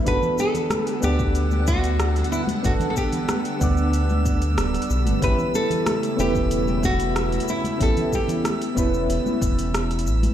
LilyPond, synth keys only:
\new Staff \with { instrumentName = "Synth keys" } { \time 4/4 \key g \lydian \tempo 4 = 93 <b d' fis' a'>4. <b d' d'' fis''>2~ <b d' d'' fis''>8 | <b d' a' fis''>4. <b d' d'' fis''>2~ <b d' d'' fis''>8 | <b cis' e' g'>4. <b cis' e' b'>2~ <b cis' e' b'>8 | <b cis' e' g'>4. <b cis' e' b'>2~ <b cis' e' b'>8 | }